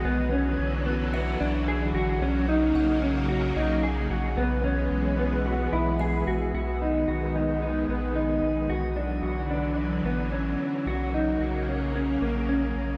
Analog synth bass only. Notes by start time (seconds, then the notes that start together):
0.05 B1
0.59 B1
1.41 B1
1.93 A1
2.21 B1
2.75 B1
3.56 B1
4.10 A#1
4.37 B1
4.91 B1
5.73 B1
6.27 A#1
6.54 B1
7.08 B1
7.88 A#1
8.42 A#1
8.69 B1
9.23 B1
10.04 A1
10.86 B1
11.40 B1
12.22 A#1
12.75 A#1